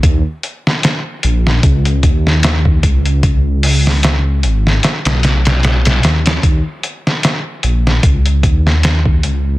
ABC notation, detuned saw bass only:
X:1
M:4/4
L:1/16
Q:"Swing 16ths" 1/4=75
K:Cblyd
V:1 name="Detuned saw bass" clef=bass
E,, z4 z B,,,2 D,,2 E,,4 D,,2- | D,,6 A,,,2 z =B,,,4- B,,, ^D,,2 | E,, z4 z B,,,2 D,,2 E,,4 D,,2 |]